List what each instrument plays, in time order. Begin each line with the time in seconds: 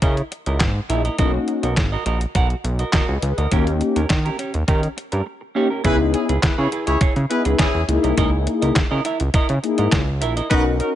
0.02 analog synth bass C#3, clean electric guitar E4 A#4 D#5, kick, closed hi-hat
0.17 muted clean electric guitar stroke, closed hi-hat
0.31 muted clean electric guitar stroke, closed hi-hat
0.46 analog synth bass C#2, clean electric guitar E4 A#4 D#5, closed hi-hat
0.60 analog synth bass G#2, kick, snare, clap, closed hi-hat
0.76 muted clean electric guitar stroke
0.89 analog synth bass A#1, analog polysynth A#3 D#4 E4 G#4, clean electric guitar E4 A#4 E5, closed hi-hat
1.05 clean electric guitar E4 A#4 D#5, closed hi-hat
1.18 analog synth bass B1, analog polysynth A#3 C#4 D#4 E4, clean electric guitar F#4 A#4 D#5, kick, closed hi-hat
1.25 analog polysynth F#4
1.34 muted clean electric guitar stroke
1.48 muted clean electric guitar stroke, closed hi-hat
1.63 analog synth bass B1, clean electric guitar F#4 A#4 D#5, closed hi-hat
1.77 analog synth bass G#1, kick, snare, clap, closed hi-hat
1.92 clean electric guitar F#4 A#4 D#5
2.06 analog synth bass A#1, clean electric guitar F#4 A#4 D#5, closed hi-hat
2.21 muted clean electric guitar stroke, closed hi-hat
2.35 analog synth bass B1, clean electric guitar F#4 A#4 F#5, kick, closed hi-hat
2.50 muted clean electric guitar stroke, closed hi-hat
2.64 analog synth bass B1, muted clean electric guitar stroke, closed hi-hat
2.79 clean electric guitar F#4 A#4 D#5, closed hi-hat
2.93 clean electric guitar F#4 A#4 D#5, kick, snare, clap, closed hi-hat
3.08 analog synth bass C#2, analog polysynth B4 D#5, muted clean electric guitar stroke
3.22 analog synth bass C#2, analog polysynth G#4 B4, muted clean electric guitar stroke, closed hi-hat
3.38 analog synth bass D2, analog polysynth F#4 A#4, clean electric guitar F#4 A#4 D#5, closed hi-hat
3.51 analog synth bass D#2, analog polysynth A#3 C#4 D#4 G4, clean electric guitar C#4 G4 A#4, kick, closed hi-hat
3.67 muted clean electric guitar stroke, closed hi-hat
3.81 muted clean electric guitar stroke, closed hi-hat
3.96 analog synth bass D#2, clean electric guitar C#4 G4 A#4, closed hi-hat
4.10 analog synth bass D#3, kick, snare, clap, closed hi-hat
4.25 clean electric guitar C#4 G4 A#4, closed hi-hat
4.39 clean electric guitar C#4 G4 C#5, closed hi-hat
4.54 analog synth bass D#2, muted clean electric guitar stroke, closed hi-hat
4.68 analog synth bass D#3, clean electric guitar C#4 G4 A#4, kick, closed hi-hat
4.83 muted clean electric guitar stroke, closed hi-hat
4.97 muted clean electric guitar stroke, closed hi-hat
5.12 analog synth bass G2, clean electric guitar C#4 G4 A#4, closed hi-hat
5.26 muted clean electric guitar stroke
5.41 muted clean electric guitar stroke
5.55 analog polysynth A#3 C#4 D#4 G4, clean electric guitar C#4 G4 C#5
5.70 clean electric guitar C#4 G4 A#4
5.84 analog synth bass C#2, analog polysynth B3 D#4 E4 G#4, clean electric guitar E4 G#4 B4, horn section E4 G#4 B4, kick, closed hi-hat
6.00 muted clean electric guitar stroke
6.13 horn section C#4 E4 G#4, muted clean electric guitar stroke, closed hi-hat
6.29 analog synth bass C#2, clean electric guitar E4 G#4 B4, closed hi-hat
6.42 analog synth bass C#3, horn section E4 G#4 B4, kick, snare, clap, closed hi-hat
6.58 analog synth bass C#3, horn section E4 G#4 C#5, clean electric guitar E4 G#4 B4
6.71 clean electric guitar E4 G#4 B4, closed hi-hat
6.87 analog synth bass C#2, horn section E4 G#4 C#5, muted clean electric guitar stroke, closed hi-hat
7.01 analog synth bass C#3, clean electric guitar E4 G#4 C#5, kick, closed hi-hat
7.16 analog synth bass C#3, muted clean electric guitar stroke, closed hi-hat
7.29 analog polysynth B3 D#4 E4 G#4, horn section E4 G#4 B4, muted clean electric guitar stroke, closed hi-hat
7.45 analog synth bass C#2, clean electric guitar E4 G#4 B4, closed hi-hat
7.59 horn section C#4 E4 G#4, clean electric guitar E4 G#4 B4, kick, snare, clap, closed hi-hat
7.74 analog synth bass E2, muted clean electric guitar stroke
7.88 analog synth bass C#2, analog polysynth A#3 D#4 E4 G#4, muted clean electric guitar stroke, closed hi-hat
8.03 analog synth bass C2, clean electric guitar E4 A#4 D#5, closed hi-hat
8.17 analog synth bass C#2, clean electric guitar E4 A#4 D#5, kick, closed hi-hat
8.32 muted clean electric guitar stroke
8.46 muted clean electric guitar stroke, closed hi-hat
8.62 analog synth bass C#2, clean electric guitar E4 A#4 D#5, closed hi-hat
8.75 analog synth bass C#3, muted clean electric guitar stroke, kick, snare, clap, closed hi-hat
8.91 analog synth bass C#3, clean electric guitar E4 A#4 D#5
9.05 clean electric guitar E4 A#4 E5, closed hi-hat
9.20 analog synth bass C#2, muted clean electric guitar stroke, closed hi-hat
9.34 analog synth bass C#3, clean electric guitar E4 A#4 D#5, kick, closed hi-hat
9.49 analog synth bass C#3, muted clean electric guitar stroke, closed hi-hat
9.63 analog polysynth A#3 D#4 E4 G#4, muted clean electric guitar stroke, closed hi-hat
9.78 analog synth bass G#2, clean electric guitar E4 A#4 D#5, closed hi-hat
9.92 analog synth bass C#2, kick, snare, clap, closed hi-hat
10.08 muted clean electric guitar stroke
10.21 analog synth bass A#1, clean electric guitar E4 A#4 E5, closed hi-hat
10.37 clean electric guitar E4 A#4 D#5, closed hi-hat
10.50 analog synth bass B1, analog polysynth C#4 D#4 F#4 A#4, horn section D#4 F#4 B4, clean electric guitar F#4 A#4 D#5, kick, closed hi-hat
10.66 muted clean electric guitar stroke
10.79 horn section D#4 F#4 A#4, muted clean electric guitar stroke, closed hi-hat